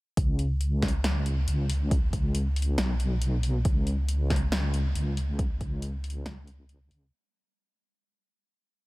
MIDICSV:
0, 0, Header, 1, 3, 480
1, 0, Start_track
1, 0, Tempo, 434783
1, 189, Time_signature, 4, 2, 24, 8
1, 9788, End_track
2, 0, Start_track
2, 0, Title_t, "Wobble bass"
2, 0, Program_c, 0, 39
2, 190, Note_on_c, 0, 37, 99
2, 1612, Note_off_c, 0, 37, 0
2, 1630, Note_on_c, 0, 37, 96
2, 2332, Note_off_c, 0, 37, 0
2, 2352, Note_on_c, 0, 37, 98
2, 3053, Note_off_c, 0, 37, 0
2, 3071, Note_on_c, 0, 35, 98
2, 4013, Note_off_c, 0, 35, 0
2, 4030, Note_on_c, 0, 37, 99
2, 5452, Note_off_c, 0, 37, 0
2, 5470, Note_on_c, 0, 37, 96
2, 6172, Note_off_c, 0, 37, 0
2, 6191, Note_on_c, 0, 37, 92
2, 6892, Note_off_c, 0, 37, 0
2, 6907, Note_on_c, 0, 37, 100
2, 7611, Note_off_c, 0, 37, 0
2, 7629, Note_on_c, 0, 37, 106
2, 7852, Note_off_c, 0, 37, 0
2, 9788, End_track
3, 0, Start_track
3, 0, Title_t, "Drums"
3, 190, Note_on_c, 9, 36, 125
3, 190, Note_on_c, 9, 42, 85
3, 301, Note_off_c, 9, 36, 0
3, 301, Note_off_c, 9, 42, 0
3, 430, Note_on_c, 9, 42, 56
3, 540, Note_off_c, 9, 42, 0
3, 670, Note_on_c, 9, 42, 85
3, 780, Note_off_c, 9, 42, 0
3, 910, Note_on_c, 9, 38, 62
3, 910, Note_on_c, 9, 46, 61
3, 911, Note_on_c, 9, 36, 60
3, 975, Note_on_c, 9, 42, 65
3, 1021, Note_off_c, 9, 36, 0
3, 1021, Note_off_c, 9, 38, 0
3, 1021, Note_off_c, 9, 46, 0
3, 1086, Note_off_c, 9, 42, 0
3, 1150, Note_on_c, 9, 38, 109
3, 1150, Note_on_c, 9, 42, 79
3, 1261, Note_off_c, 9, 38, 0
3, 1261, Note_off_c, 9, 42, 0
3, 1390, Note_on_c, 9, 42, 58
3, 1501, Note_off_c, 9, 42, 0
3, 1631, Note_on_c, 9, 42, 85
3, 1741, Note_off_c, 9, 42, 0
3, 1872, Note_on_c, 9, 46, 102
3, 1982, Note_off_c, 9, 46, 0
3, 2111, Note_on_c, 9, 36, 123
3, 2112, Note_on_c, 9, 42, 86
3, 2222, Note_off_c, 9, 36, 0
3, 2222, Note_off_c, 9, 42, 0
3, 2351, Note_on_c, 9, 36, 64
3, 2352, Note_on_c, 9, 42, 56
3, 2461, Note_off_c, 9, 36, 0
3, 2462, Note_off_c, 9, 42, 0
3, 2591, Note_on_c, 9, 42, 85
3, 2701, Note_off_c, 9, 42, 0
3, 2830, Note_on_c, 9, 46, 60
3, 2895, Note_on_c, 9, 42, 65
3, 2941, Note_off_c, 9, 46, 0
3, 3005, Note_off_c, 9, 42, 0
3, 3069, Note_on_c, 9, 38, 120
3, 3069, Note_on_c, 9, 42, 76
3, 3179, Note_off_c, 9, 38, 0
3, 3179, Note_off_c, 9, 42, 0
3, 3310, Note_on_c, 9, 42, 56
3, 3421, Note_off_c, 9, 42, 0
3, 3550, Note_on_c, 9, 42, 83
3, 3661, Note_off_c, 9, 42, 0
3, 3790, Note_on_c, 9, 46, 94
3, 3900, Note_off_c, 9, 46, 0
3, 4029, Note_on_c, 9, 42, 87
3, 4031, Note_on_c, 9, 36, 127
3, 4140, Note_off_c, 9, 42, 0
3, 4142, Note_off_c, 9, 36, 0
3, 4270, Note_on_c, 9, 42, 55
3, 4380, Note_off_c, 9, 42, 0
3, 4510, Note_on_c, 9, 42, 83
3, 4620, Note_off_c, 9, 42, 0
3, 4751, Note_on_c, 9, 36, 65
3, 4751, Note_on_c, 9, 38, 61
3, 4751, Note_on_c, 9, 46, 60
3, 4815, Note_on_c, 9, 42, 65
3, 4861, Note_off_c, 9, 36, 0
3, 4862, Note_off_c, 9, 38, 0
3, 4862, Note_off_c, 9, 46, 0
3, 4925, Note_off_c, 9, 42, 0
3, 4990, Note_on_c, 9, 38, 119
3, 4990, Note_on_c, 9, 42, 79
3, 5101, Note_off_c, 9, 38, 0
3, 5101, Note_off_c, 9, 42, 0
3, 5230, Note_on_c, 9, 42, 55
3, 5341, Note_off_c, 9, 42, 0
3, 5470, Note_on_c, 9, 42, 81
3, 5581, Note_off_c, 9, 42, 0
3, 5710, Note_on_c, 9, 46, 95
3, 5821, Note_off_c, 9, 46, 0
3, 5950, Note_on_c, 9, 36, 127
3, 5950, Note_on_c, 9, 42, 78
3, 6061, Note_off_c, 9, 36, 0
3, 6061, Note_off_c, 9, 42, 0
3, 6190, Note_on_c, 9, 36, 65
3, 6190, Note_on_c, 9, 42, 51
3, 6301, Note_off_c, 9, 36, 0
3, 6301, Note_off_c, 9, 42, 0
3, 6429, Note_on_c, 9, 42, 81
3, 6539, Note_off_c, 9, 42, 0
3, 6668, Note_on_c, 9, 46, 60
3, 6734, Note_on_c, 9, 42, 63
3, 6778, Note_off_c, 9, 46, 0
3, 6845, Note_off_c, 9, 42, 0
3, 6908, Note_on_c, 9, 38, 113
3, 6908, Note_on_c, 9, 42, 76
3, 7019, Note_off_c, 9, 38, 0
3, 7019, Note_off_c, 9, 42, 0
3, 7148, Note_on_c, 9, 42, 53
3, 7258, Note_off_c, 9, 42, 0
3, 7388, Note_on_c, 9, 42, 79
3, 7498, Note_off_c, 9, 42, 0
3, 7628, Note_on_c, 9, 46, 91
3, 7739, Note_off_c, 9, 46, 0
3, 9788, End_track
0, 0, End_of_file